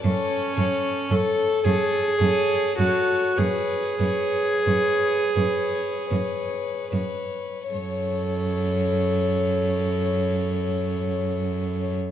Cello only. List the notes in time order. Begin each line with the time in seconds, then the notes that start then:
0.04 F#2
0.57 F#2
1.11 F#2
1.65 F#2
2.21 F#2
2.79 F#2
3.38 F#2
4.00 F#2
4.67 F#2
5.36 F#2
6.11 F#2
6.93 F#2
7.73 F#2